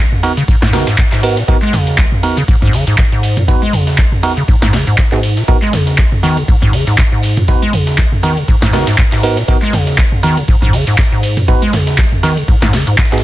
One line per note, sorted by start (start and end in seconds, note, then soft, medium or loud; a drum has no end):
0.12 mid tom medium
0.23 0.31 B3 loud
0.23 0.31 D#4 medium
0.23 0.31 F#4 medium
0.23 0.31 A#4 loud
0.23 closed hi-hat medium
0.23 open hi-hat loud
0.23 ride medium
0.23 tambourine loud
0.37 0.43 C#3 medium
0.37 closed hi-hat medium
0.37 tambourine soft
0.48 0.56 G#2 medium
0.48 kick loud
0.48 closed hi-hat medium
0.48 ride medium
0.48 tambourine soft
0.62 0.75 G#2 loud
0.62 kick medium
0.62 snare medium
0.62 mid tom medium
0.73 0.85 C#3 loud
0.73 0.86 B3 medium
0.73 0.86 D#4 medium
0.73 0.86 F#4 medium
0.73 0.86 A#4 loud
0.73 snare loud
0.73 snare medium
0.73 closed hi-hat medium
0.73 open hi-hat loud
0.73 ride medium
0.73 tambourine medium
0.87 0.96 G#2 medium
0.87 snare loud
0.87 closed hi-hat medium
0.87 tambourine medium
0.98 kick loud
0.98 snare loud
0.98 clap loud
0.98 closed hi-hat medium
0.98 ride medium
0.98 tambourine soft
1.12 1.39 G#2 medium
1.12 snare loud
1.12 clap soft
1.12 closed hi-hat medium
1.23 1.36 B3 loud
1.23 1.36 D#4 medium
1.23 1.36 F#4 medium
1.23 1.36 A#4 loud
1.23 closed hi-hat medium
1.23 open hi-hat loud
1.23 ride medium
1.23 tambourine medium
1.36 1.43 A#2 medium
1.36 snare soft
1.36 closed hi-hat medium
1.36 tambourine medium
1.48 1.56 G#2 medium
1.48 1.56 B3 medium
1.48 1.56 D#4 medium
1.48 1.56 F#4 medium
1.48 1.56 A#4 loud
1.48 kick loud
1.48 closed hi-hat medium
1.48 ride soft
1.62 1.75 G#3 loud
1.62 clap soft
1.73 2.00 C#3 loud
1.73 snare soft
1.73 closed hi-hat medium
1.73 mid tom medium
1.73 open hi-hat loud
1.73 ride medium
1.73 tambourine medium
1.87 snare soft
1.87 closed hi-hat medium
1.87 tambourine medium
1.98 2.06 G#1 loud
1.98 kick loud
1.98 snare loud
1.98 clap loud
1.98 closed hi-hat medium
1.98 ride medium
1.98 tambourine soft
2.12 mid tom medium
2.23 2.36 B3 medium
2.23 2.36 D#4 medium
2.23 2.36 F#4 medium
2.23 2.36 A#4 loud
2.23 closed hi-hat medium
2.23 open hi-hat loud
2.23 ride medium
2.23 tambourine loud
2.37 2.43 C#3 medium
2.37 closed hi-hat medium
2.37 tambourine medium
2.48 2.56 G#2 medium
2.48 kick loud
2.48 closed hi-hat medium
2.48 ride medium
2.48 tambourine soft
2.62 2.75 G#2 loud
2.62 kick medium
2.62 mid tom loud
2.73 2.85 C#3 loud
2.73 snare soft
2.73 closed hi-hat medium
2.73 open hi-hat loud
2.73 ride medium
2.73 tambourine medium
2.87 2.96 G#2 medium
2.87 snare soft
2.87 closed hi-hat medium
2.87 tambourine medium
2.98 kick loud
2.98 snare loud
2.98 clap loud
2.98 closed hi-hat medium
2.98 ride medium
2.98 tambourine soft
3.12 3.39 G#2 medium
3.23 closed hi-hat medium
3.23 open hi-hat medium
3.23 ride medium
3.23 tambourine loud
3.37 3.43 A#2 medium
3.37 closed hi-hat medium
3.37 mid tom loud
3.37 tambourine medium
3.48 3.56 G#2 medium
3.48 3.61 B3 medium
3.48 3.61 D#4 medium
3.48 3.61 F#4 medium
3.48 3.61 B4 loud
3.48 kick loud
3.48 closed hi-hat soft
3.48 closed hi-hat medium
3.48 ride medium
3.62 3.75 G#3 loud
3.73 4.00 C#3 loud
3.73 closed hi-hat medium
3.73 mid tom medium
3.73 open hi-hat loud
3.73 ride medium
3.73 tambourine medium
3.87 snare medium
3.87 closed hi-hat medium
3.87 tambourine medium
3.98 4.06 G#1 loud
3.98 kick loud
3.98 snare loud
3.98 clap loud
3.98 closed hi-hat medium
3.98 closed hi-hat soft
3.98 ride medium
3.98 tambourine soft
4.12 mid tom medium
4.23 4.31 B3 loud
4.23 4.31 D#4 medium
4.23 4.31 F#4 medium
4.23 4.31 A#4 loud
4.23 snare loud
4.23 closed hi-hat medium
4.23 open hi-hat medium
4.23 ride medium
4.23 tambourine medium
4.37 4.43 C#3 medium
4.37 closed hi-hat medium
4.37 tambourine medium
4.48 4.56 G#2 medium
4.48 kick loud
4.48 closed hi-hat medium
4.48 ride medium
4.48 tambourine soft
4.62 4.75 G#2 loud
4.62 kick medium
4.62 snare medium
4.62 mid tom loud
4.73 4.85 C#3 loud
4.73 snare medium
4.73 open hi-hat loud
4.73 open hi-hat medium
4.73 ride medium
4.73 tambourine loud
4.87 4.96 G#2 medium
4.87 closed hi-hat medium
4.87 tambourine medium
4.98 5.03 G#2 medium
4.98 kick loud
4.98 snare loud
4.98 clap loud
4.98 closed hi-hat medium
4.98 ride medium
4.98 tambourine soft
5.12 5.39 G#2 medium
5.12 5.19 B3 medium
5.12 5.19 D#4 medium
5.12 5.19 F#4 medium
5.12 5.19 G#4 medium
5.12 snare soft
5.12 clap soft
5.23 closed hi-hat medium
5.23 open hi-hat loud
5.23 ride medium
5.23 tambourine loud
5.37 5.43 A#2 medium
5.37 snare soft
5.37 closed hi-hat medium
5.37 tambourine medium
5.47 5.56 G#2 medium
5.47 5.56 B3 loud
5.47 5.56 D#4 medium
5.47 5.56 F#4 medium
5.47 5.56 A#4 loud
5.47 kick loud
5.47 closed hi-hat soft
5.47 closed hi-hat medium
5.47 ride medium
5.47 tambourine soft
5.62 5.75 G#3 loud
5.62 clap soft
5.73 6.00 C#3 loud
5.73 snare soft
5.73 closed hi-hat medium
5.73 mid tom medium
5.73 open hi-hat loud
5.73 ride medium
5.73 tambourine medium
5.87 snare soft
5.87 closed hi-hat medium
5.87 tambourine medium
5.98 6.06 G#1 loud
5.98 kick loud
5.98 snare loud
5.98 clap loud
5.98 closed hi-hat medium
5.98 ride medium
5.98 tambourine soft
6.12 mid tom medium
6.23 6.39 D#3 loud
6.23 6.36 B3 medium
6.23 6.36 D#4 medium
6.23 6.36 F#4 medium
6.23 6.36 A#4 loud
6.23 closed hi-hat medium
6.23 open hi-hat medium
6.23 ride medium
6.23 tambourine loud
6.37 6.43 C#3 medium
6.37 closed hi-hat medium
6.37 tambourine medium
6.48 6.56 G#2 medium
6.48 kick loud
6.48 closed hi-hat medium
6.48 ride medium
6.48 tambourine soft
6.62 6.75 G#2 loud
6.62 kick medium
6.62 mid tom medium
6.73 6.85 C#3 loud
6.73 snare soft
6.73 closed hi-hat medium
6.73 open hi-hat loud
6.73 ride medium
6.73 tambourine medium
6.87 6.96 G#2 medium
6.87 snare soft
6.87 closed hi-hat medium
6.87 tambourine medium
6.98 kick loud
6.98 snare loud
6.98 clap loud
6.98 closed hi-hat medium
6.98 ride medium
6.98 tambourine soft
7.12 7.39 G#2 medium
7.23 closed hi-hat medium
7.23 open hi-hat medium
7.23 ride medium
7.23 tambourine medium
7.37 7.43 A#2 medium
7.37 closed hi-hat medium
7.37 mid tom loud
7.37 tambourine medium
7.48 7.56 G#2 medium
7.48 7.61 B3 medium
7.48 7.61 D#4 medium
7.48 7.61 F#4 medium
7.48 7.61 B4 loud
7.48 kick loud
7.48 closed hi-hat medium
7.48 ride medium
7.48 tambourine soft
7.62 7.75 G#3 loud
7.73 8.00 C#3 loud
7.73 closed hi-hat medium
7.73 mid tom medium
7.73 open hi-hat loud
7.73 ride medium
7.73 tambourine medium
7.87 snare medium
7.87 closed hi-hat medium
7.87 tambourine medium
7.98 8.06 G#1 loud
7.98 kick loud
7.98 snare loud
7.98 clap loud
7.98 closed hi-hat medium
7.98 ride medium
7.98 tambourine soft
8.12 mid tom medium
8.23 8.39 D#3 loud
8.23 8.31 B3 loud
8.23 8.31 D#4 medium
8.23 8.31 F#4 medium
8.23 8.31 A#4 loud
8.23 closed hi-hat medium
8.23 open hi-hat medium
8.23 ride medium
8.23 tambourine loud
8.37 8.43 C#3 medium
8.37 closed hi-hat medium
8.37 tambourine soft
8.48 8.56 G#2 medium
8.48 kick loud
8.48 closed hi-hat medium
8.48 ride medium
8.48 tambourine soft
8.62 8.75 G#2 loud
8.62 kick medium
8.62 snare medium
8.62 mid tom loud
8.73 8.85 C#3 loud
8.73 8.86 B3 medium
8.73 8.86 D#4 medium
8.73 8.86 F#4 medium
8.73 8.86 A#4 loud
8.73 snare loud
8.73 snare medium
8.73 closed hi-hat medium
8.73 open hi-hat loud
8.73 ride medium
8.73 tambourine loud
8.87 8.96 G#2 medium
8.87 snare loud
8.87 closed hi-hat medium
8.87 tambourine medium
8.98 kick loud
8.98 snare loud
8.98 clap loud
8.98 closed hi-hat medium
8.98 ride medium
8.98 tambourine soft
9.12 9.39 G#2 medium
9.12 snare loud
9.12 clap soft
9.12 closed hi-hat medium
9.23 9.36 B3 loud
9.23 9.36 D#4 medium
9.23 9.36 F#4 medium
9.23 9.36 A#4 loud
9.23 closed hi-hat medium
9.23 open hi-hat medium
9.23 ride medium
9.23 tambourine medium
9.36 9.43 A#2 medium
9.36 snare soft
9.36 closed hi-hat medium
9.36 tambourine medium
9.48 9.56 G#2 medium
9.48 9.56 B3 loud
9.48 9.56 D#4 medium
9.48 9.56 F#4 medium
9.48 9.56 A#4 loud
9.48 kick loud
9.48 closed hi-hat medium
9.48 ride medium
9.48 tambourine soft
9.62 9.75 G#3 loud
9.62 clap soft
9.73 10.00 C#3 loud
9.73 snare soft
9.73 closed hi-hat medium
9.73 mid tom medium
9.73 open hi-hat loud
9.73 ride medium
9.73 tambourine medium
9.87 snare soft
9.87 closed hi-hat medium
9.87 tambourine medium
9.98 10.06 G#1 loud
9.98 kick loud
9.98 snare loud
9.98 clap loud
9.98 closed hi-hat medium
9.98 ride medium
10.12 mid tom medium
10.23 10.39 D#3 loud
10.23 10.36 B3 medium
10.23 10.36 D#4 medium
10.23 10.36 F#4 medium
10.23 10.36 A#4 loud
10.23 closed hi-hat medium
10.23 open hi-hat medium
10.23 ride medium
10.23 tambourine medium
10.37 10.43 C#3 medium
10.37 closed hi-hat medium
10.37 tambourine medium
10.48 10.56 G#2 medium
10.48 kick loud
10.48 closed hi-hat medium
10.48 ride medium
10.48 tambourine soft
10.62 10.75 G#2 loud
10.62 kick medium
10.62 mid tom medium
10.73 10.85 C#3 loud
10.73 snare soft
10.73 closed hi-hat medium
10.73 open hi-hat loud
10.73 ride medium
10.73 tambourine medium
10.87 10.96 G#2 medium
10.87 snare soft
10.87 closed hi-hat medium
10.87 tambourine medium
10.98 11.03 G#2 medium
10.98 kick loud
10.98 snare loud
10.98 clap loud
10.98 closed hi-hat medium
10.98 ride medium
10.98 tambourine soft
11.12 11.39 G#2 medium
11.23 closed hi-hat medium
11.23 open hi-hat medium
11.23 ride medium
11.23 tambourine loud
11.37 11.43 A#2 medium
11.37 closed hi-hat medium
11.37 mid tom medium
11.37 tambourine soft
11.48 11.56 G#2 medium
11.48 11.61 B3 medium
11.48 11.61 D#4 medium
11.48 11.61 F#4 medium
11.48 11.61 B4 loud
11.48 kick loud
11.48 closed hi-hat medium
11.48 ride medium
11.48 tambourine soft
11.62 11.75 G#3 loud
11.73 12.00 C#3 loud
11.73 snare soft
11.73 closed hi-hat medium
11.73 mid tom medium
11.73 open hi-hat loud
11.73 ride medium
11.73 tambourine medium
11.87 snare medium
11.87 closed hi-hat medium
11.87 tambourine medium
11.98 12.06 G#1 loud
11.98 kick loud
11.98 snare loud
11.98 clap loud
11.98 closed hi-hat medium
11.98 ride medium
11.98 tambourine soft
12.12 mid tom medium
12.23 12.39 D#3 loud
12.23 12.31 B3 loud
12.23 12.31 D#4 medium
12.23 12.31 F#4 medium
12.23 12.31 A#4 loud
12.23 closed hi-hat medium
12.23 open hi-hat medium
12.23 ride medium
12.23 tambourine medium
12.37 12.43 C#3 medium
12.37 closed hi-hat medium
12.37 tambourine medium
12.48 12.56 G#2 medium
12.48 kick loud
12.48 closed hi-hat medium
12.48 ride medium
12.48 tambourine soft
12.62 12.75 G#2 loud
12.62 kick medium
12.62 snare medium
12.62 mid tom medium
12.73 12.85 C#3 loud
12.73 snare medium
12.73 open hi-hat medium
12.73 open hi-hat loud
12.73 ride medium
12.73 tambourine medium
12.87 12.96 G#2 medium
12.87 closed hi-hat medium
12.87 tambourine soft
12.98 13.03 G#2 medium
12.98 kick loud
12.98 snare medium
12.98 clap loud
12.98 closed hi-hat medium
12.98 ride medium
12.98 tambourine soft
13.05 snare medium
13.05 closed hi-hat medium
13.12 13.24 G#2 medium
13.12 13.19 B3 medium
13.12 13.19 D#4 medium
13.12 13.19 F#4 medium
13.12 13.19 G#4 loud
13.12 snare medium
13.12 clap soft
13.12 closed hi-hat medium
13.18 snare medium
13.18 closed hi-hat medium